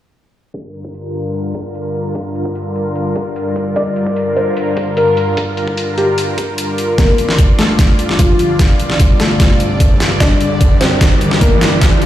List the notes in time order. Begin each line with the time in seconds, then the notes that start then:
0.54 G2 D3 F4 A#4, kick, closed hi-hat
0.74 closed hi-hat
0.84 kick
0.94 closed hi-hat
1.14 closed hi-hat
1.35 closed hi-hat
1.55 kick, closed hi-hat
1.75 closed hi-hat
1.95 closed hi-hat
2.15 kick, closed hi-hat
2.35 closed hi-hat
2.45 kick
2.55 closed hi-hat
2.75 closed hi-hat
2.96 closed hi-hat
3.16 kick, closed hi-hat
3.36 closed hi-hat
3.56 kick, closed hi-hat
3.76 D5, kick, closed hi-hat
3.96 closed hi-hat
4.06 kick
4.16 closed hi-hat
4.36 C5, closed hi-hat
4.57 closed hi-hat
4.77 kick, closed hi-hat
4.97 A#4, closed hi-hat
5.17 closed hi-hat
5.37 kick, closed hi-hat
5.57 closed hi-hat
5.68 kick
5.77 closed hi-hat
5.98 G4, closed hi-hat
6.18 closed hi-hat
6.38 kick, closed hi-hat
6.58 closed hi-hat
6.78 closed hi-hat
6.98 G2 D3 A#3 F4 A#4 D5, kick, snare, closed hi-hat, riser
7.18 closed hi-hat
7.29 snare
7.39 kick, closed hi-hat
7.59 A3 A4, snare, closed hi-hat
7.79 kick, snare, closed hi-hat
7.99 closed hi-hat
8.09 snare
8.19 F3 F4, kick, closed hi-hat
8.39 closed hi-hat
8.59 kick, snare, closed hi-hat
8.80 closed hi-hat
8.90 snare
9.00 kick, closed hi-hat
9.20 A3 A4, snare, closed hi-hat
9.40 kick, snare, closed hi-hat
9.60 closed hi-hat
9.80 kick, closed hi-hat
10.00 snare, closed hi-hat
10.20 D4 G4 D5, kick, snare, closed hi-hat
10.41 closed hi-hat
10.61 kick, closed hi-hat
10.81 C4 C5, snare, closed hi-hat
11.01 kick, snare, closed hi-hat
11.21 closed hi-hat
11.31 snare
11.41 A#3 A#4, kick, closed hi-hat
11.61 snare, closed hi-hat
11.81 kick, snare, closed hi-hat
12.02 closed hi-hat